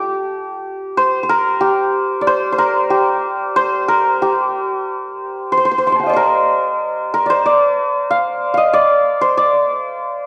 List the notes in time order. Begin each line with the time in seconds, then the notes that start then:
Already playing: G4 A4
0.97 C5
1.23 C5
1.29 A#4
1.60 G4
2.21 D5
2.27 C5
2.52 C5
2.58 A#4
2.90 G4
3.56 C5
3.88 A#4
4.22 G4
5.52 C5
5.58 C5
5.65 C5
5.72 C5
5.78 C5
5.87 C5 C6 D6
5.92 C5 A5 A#5
5.99 C5 G5
6.03 D#5 F5
6.09 C5 D5
6.16 A#4
7.13 A#4
7.26 D5
7.30 C5
7.46 D5
8.10 F5
8.54 D#5 F5
8.73 D5
9.21 C5
9.37 D5